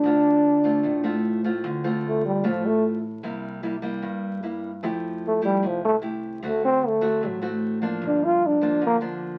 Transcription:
Already playing: trombone D4
0.04 upright bass D2, nylon-string guitar D3 A3 C4 F4
0.64 nylon-string guitar A3 C4 F4
0.83 upright bass A1, nylon-string guitar A2
1.03 nylon-string guitar A3 C4 F4
1.44 nylon-string guitar A3 C4 F4
1.64 upright bass D2, nylon-string guitar D3
1.84 nylon-string guitar A3 C4 F4
2.08 trombone A3
2.25 trombone G3
2.44 upright bass A1, nylon-string guitar A2 A3 C4 F4
2.48 trombone F3
2.66 trombone A3
3.23 upright bass C2, nylon-string guitar C3 G3 A#3 E4
3.63 nylon-string guitar G3 A#3 E4
3.82 nylon-string guitar G3 A#3 E4
4.02 nylon-string guitar G2, upright bass G2
4.43 nylon-string guitar G3 A#3 E4
4.83 upright bass F2, nylon-string guitar F3 A3 E4 G4
5.27 trombone A3
5.42 trombone G3, nylon-string guitar A3 E4 G4
5.63 upright bass C2, nylon-string guitar C3
5.67 trombone F3
5.85 trombone A3
6.01 nylon-string guitar A3 E4 G4
6.43 upright bass D2, nylon-string guitar D3 A3 C4 F#4
6.48 trombone A3
6.65 trombone C4
6.87 trombone A3
7.01 nylon-string guitar A3 C4 F#4
7.21 upright bass A1, nylon-string guitar A2
7.26 trombone F#3
7.42 nylon-string guitar A3 C4 F#4
7.82 nylon-string guitar F3 A#3 D4
8.02 upright bass G1, nylon-string guitar G2
8.06 trombone D4
8.24 trombone F4
8.46 trombone D4
8.61 nylon-string guitar F3 A#3 D4
8.81 upright bass D2, nylon-string guitar D3
8.86 trombone A#3
9.01 nylon-string guitar F3 A#3 D4

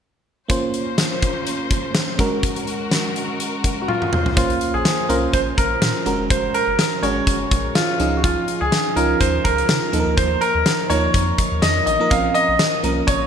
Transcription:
0.48 fm electric piano A#3 C#4 F4 C5, string section A#3 C#4 C5, kick, closed hi-hat
0.74 closed hi-hat
0.98 snare, closed hi-hat
1.22 kick, closed hi-hat
1.47 closed hi-hat
1.71 kick, closed hi-hat
1.95 snare, closed hi-hat
2.18 fm electric piano G#3 C#4 F#4 A#4, string section G#3 F#4 A#4, kick, closed hi-hat
2.43 kick, closed hi-hat
2.56 closed hi-hat
2.67 closed hi-hat
2.91 snare, closed hi-hat
3.16 closed hi-hat
3.40 closed hi-hat
3.64 kick, closed hi-hat
3.82 grand piano F#4
3.88 grand piano F4, high tom
4.02 mid tom
4.13 string section A#3 C#4 C5, mid tom
4.26 floor tom
4.36 analog synth bass A#1, fm electric piano A#3 C#4 F4 C5, grand piano F4, kick, closed hi-hat
4.50 closed hi-hat
4.61 closed hi-hat
4.74 analog synth bass A#1, grand piano G#4
4.85 snare, closed hi-hat
5.09 analog synth bass C2, fm electric piano A#3 C#4 F4 C5, grand piano A#4, closed hi-hat
5.33 analog synth bass A#1, grand piano C5, kick, closed hi-hat
5.57 analog synth bass A#1, grand piano A#4, kick, closed hi-hat
5.82 analog synth bass A#2, snare, closed hi-hat
6.06 analog synth bass F#1, fm electric piano G#3 C#4 F#4 A#4, closed hi-hat
6.19 analog synth bass F1
6.30 analog synth bass F#1, grand piano C5, kick, closed hi-hat
6.54 grand piano A#4, closed hi-hat
6.68 analog synth bass F#1
6.79 snare, closed hi-hat
7.02 analog synth bass G#1, fm electric piano G#3 C#4 F#4 G#4, grand piano C#5, closed hi-hat
7.27 analog synth bass F#1, kick, closed hi-hat
7.51 analog synth bass A#1, kick, closed hi-hat
7.75 grand piano F4, snare, closed hi-hat
7.99 analog synth bass C#2, fm electric piano F3 C#4 D#4 G#4, closed hi-hat
8.17 grand piano F#4
8.24 grand piano F4, kick, closed hi-hat
8.48 closed hi-hat
8.61 analog synth bass C#2, grand piano G#4
8.72 snare, closed hi-hat
8.96 analog synth bass C#2, fm electric piano F3 C#4 D#4 F4, grand piano A#4, closed hi-hat
9.20 analog synth bass D#2, grand piano C5, kick, closed hi-hat
9.44 analog synth bass C#2, grand piano A#4, kick, closed hi-hat
9.58 closed hi-hat
9.69 analog synth bass C#3, snare, closed hi-hat
9.92 analog synth bass D#2, fm electric piano F3 A#3 D#4 A4, closed hi-hat
10.00 fm electric piano A#4
10.07 analog synth bass D2
10.17 analog synth bass D#2, grand piano C5, kick, closed hi-hat
10.41 grand piano A#4, closed hi-hat
10.55 analog synth bass D#2
10.66 snare, closed hi-hat
10.90 analog synth bass D#2, fm electric piano F3 A#3 D#4 A#4, grand piano C#5, closed hi-hat
11.14 analog synth bass F2, kick, closed hi-hat
11.38 analog synth bass D#2, kick, closed hi-hat
11.52 analog synth bass D#2
11.62 analog synth bass F2, grand piano D#5, snare, closed hi-hat
11.86 analog synth bass A1, grand piano D#5, closed hi-hat
12.00 fm electric piano F3 A#3 D#4 A#4
12.10 analog synth bass A#1, fm electric piano F3 C4 C#4 A#4, grand piano F5, kick, closed hi-hat
12.34 grand piano D#5, closed hi-hat
12.49 analog synth bass A#1
12.59 snare, closed hi-hat
12.83 analog synth bass C2, fm electric piano F3 A#3 C#4 A#4, closed hi-hat
13.07 analog synth bass A#1, grand piano C#5, kick, closed hi-hat

